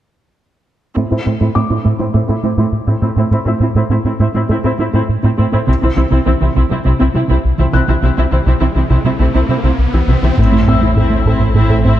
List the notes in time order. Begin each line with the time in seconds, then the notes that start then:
0.96 A2 A3 C4 E4
1.10 A2 C4 E4 A4
1.26 A2 C4 E4
1.40 A2 A3 C4 E4
1.55 A2 C4 E4 D6
1.70 A2 C4 E4
1.84 A2 A3 C4 E4
1.99 A2 A3 C4 E4
2.14 A2 A3 C4 E4
2.29 A2 C4 E4 A4
2.43 A2 A3 C4 E4
2.57 A2 A3 C4 E4
2.72 A2
2.87 A2 C4 E4
3.02 A2 A3 C4 E4
3.16 A2 C4 E4
3.31 A2 A3 C4 E4
3.45 A2 C4 E4 A4
3.60 A2 C4 E4
3.75 A2 A3 C4 E4
3.89 A2 C4 E4
4.05 A2 C4 E4
4.20 A2 A3 C4 E4
4.35 A2 A3 C4 E4
4.49 A2 A3 C4 E4
4.64 A2 C4 E4 A4
4.78 A2 A3 C4 E4
4.93 A2 A3 C4 E4
5.09 A2
5.23 A2 C4 E4
5.38 A2 A3 C4 E4
5.52 A2 C4 E4
5.66 C2 C3 C4 E4, riser
5.81 C2 C3 C4 E4
5.96 C2 C3 E3 C4 E4
6.11 C2 C3 C4 E4
6.25 C2 C3 E3 C4 E4
6.40 C2 C3 E3 C4 E4
6.55 C2 C3 C4 E4
6.69 C3 G3 C4 E4
6.84 C2 C3 C4 E4
6.99 C2 C3 C4 E4
7.14 C3 G3 C4 E4
7.28 C2 C3 C4 E4
7.45 C2
7.58 C2 C3 E3 C4 E4
7.73 C2 C3 C4 E4 F#6
7.88 C2 C3 E3 C4 E4
8.02 C2 C3 C4 E4
8.17 C2 C3 C4 E4
8.32 C2 C3 E3 C4 E4
8.46 C2 C3 C4 E4
8.61 C2 C3 E3 C4 E4
8.75 C2 C3 E3 C4 E4
8.90 C2 C3 C4 E4
9.04 C3 G3 C4 E4
9.19 C2 C3 C4 E4
9.35 C2 C3 C4 E4
9.49 C3 G3 C4 E4
9.64 C2 C3 C4 E4
9.78 C2
9.93 C2 C3 E3 C4 E4
10.07 C2 C3 C4 E4
10.23 C2 C3 E3 C4 E4
10.37 A1 A2 A3 C4 E4, taiko, sub drop
10.52 A3 E4
10.67 A2 C4 E4 E5 E6
10.81 A3 E4
10.96 A2 A3 C4 E4
11.10 A3
11.26 A2 C4 E4 A4, taiko
11.40 A2 C4
11.55 A2 A3 C4 E4
11.70 A2 A4
11.84 A2 C4 E4